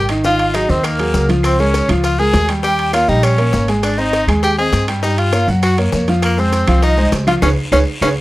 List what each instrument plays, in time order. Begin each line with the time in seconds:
Already playing: upright bass G#1
0.09 grand piano D#3 D#4 D#5, high bongo, high timbale, short guiro, claves, maracas
0.24 grand piano D#3 D#4 D#5, tenor saxophone F4, flute F5, high bongo, long guiro, maracas
0.39 high timbale, maracas
0.54 grand piano F#3 F#4 G#4, tenor saxophone D#4, flute D#5, high bongo, high timbale, short guiro, claves, maracas
0.69 upright bass D#2, grand piano D#3 D#4 D#5, tenor saxophone C4, flute C5, high bongo, short guiro, maracas
0.83 tenor saxophone A#3, flute A#4, high bongo, high timbale, long guiro, claves, maracas
0.99 grand piano F#3 F#4 G#4, high bongo, high timbale, maracas
1.14 upright bass C#2, grand piano F#3 F#4 G#4, high bongo, low bongo, short guiro, maracas
1.29 grand piano F3 F4 F5, high bongo, high timbale, short guiro, maracas
1.43 tenor saxophone C4, flute C5, high bongo, high timbale, long guiro, claves, maracas
1.59 grand piano G#3 G#4 A#4, tenor saxophone C#4, flute C#5, high bongo, maracas
1.74 high bongo, high timbale, short guiro, maracas
1.89 upright bass C#2, grand piano F3 F4 F5, high timbale, short guiro, claves, maracas
2.04 tenor saxophone F4, flute F5, high bongo, high timbale, long guiro, maracas
2.19 grand piano G#3 G#4 A#4, tenor saxophone G#4, flute G#5, high bongo, maracas
2.33 upright bass D#2, high bongo, low bongo, high timbale, low timbale, short guiro, maracas
2.48 grand piano G3 G4 G5, high bongo, high timbale, short guiro, claves, maracas
2.63 grand piano G3 G4 G5, tenor saxophone G4, flute G5, high bongo, long guiro, maracas
2.79 high timbale, maracas
2.93 grand piano A#3 A#4 C#5, tenor saxophone F4, flute F5, high bongo, high timbale, short guiro, claves, maracas
3.08 upright bass A#1, grand piano G3 G4 G5, tenor saxophone D#4, flute D#5, high bongo, short guiro, maracas
3.23 tenor saxophone C#4, flute C#5, high bongo, high timbale, long guiro, claves, maracas
3.38 grand piano A#3 A#4 C#5, high bongo, high timbale, maracas
3.53 upright bass G#1, grand piano A#3 A#4 C#5, high bongo, low bongo, short guiro, maracas
3.68 grand piano G#3 G#4 G#5, high bongo, high timbale, short guiro, maracas
3.83 tenor saxophone D4, flute D5, high bongo, high timbale, long guiro, claves, maracas
3.98 grand piano C4 C5 D#5, tenor saxophone D#4, flute D#5, high bongo, maracas
4.13 high bongo, high timbale, short guiro, maracas
4.27 upright bass D#2, grand piano G#3 G#4 G#5, high timbale, short guiro, claves, maracas
4.43 tenor saxophone G4, flute G5, high bongo, high timbale, long guiro, maracas
4.58 grand piano C4 C5 D#5, tenor saxophone G#4, flute G#5, high bongo, maracas
4.72 upright bass G2, high bongo, low bongo, high timbale, short guiro, maracas
4.88 grand piano G3 G4 G5, high bongo, high timbale, short guiro, claves, maracas
5.03 grand piano G3 G4 G5, tenor saxophone D#4, flute D#5, high bongo, maracas
5.18 tenor saxophone F4, flute F5, high timbale, maracas
5.33 grand piano A#3 A#4 C#5, high bongo, high timbale, short guiro, claves, maracas
5.48 upright bass F#2, grand piano F#3 F#4 F#5, high bongo, short guiro, maracas
5.63 tenor saxophone F#4, flute F#5, high bongo, high timbale, long guiro, claves, maracas
5.77 grand piano A#3 A#4 C#5, high bongo, high timbale, maracas
5.92 upright bass F2, grand piano A#3 A#4 C#5, high bongo, low bongo, short guiro, maracas
6.08 grand piano F3 F4 F5, high bongo, high timbale, short guiro, maracas
6.22 tenor saxophone A#3, flute A#4, high bongo, high timbale, long guiro, claves, maracas
6.38 grand piano G#3 G#4 C5, tenor saxophone C4, flute C5, high bongo, maracas
6.52 high bongo, high timbale, short guiro, maracas
6.67 upright bass C2, grand piano F3 F4 F5, high timbale, short guiro, claves, maracas
6.83 tenor saxophone D#4, flute D#5, high bongo, high timbale, long guiro, maracas
6.97 grand piano G#3 G#4 C5, high bongo, maracas
7.12 upright bass C#2, high bongo, low bongo, high timbale, low timbale, short guiro, maracas
7.27 grand piano F3 F4 F5, tenor saxophone F4, flute F5, high bongo, high timbale, short guiro, claves, maracas
7.42 upright bass C#2, tenor saxophone C#4, grand piano G#4 B4 C#5, flute C#5, low bongo, high timbale, long guiro, claves, maracas
7.72 upright bass C#2, tenor saxophone C#4, grand piano G#4 B4 C#5, flute C#5, low bongo, high timbale, claves, maracas
8.01 upright bass C#2, tenor saxophone C#4, grand piano G#4 B4 C#5, flute C#5, low bongo, high timbale, claves, maracas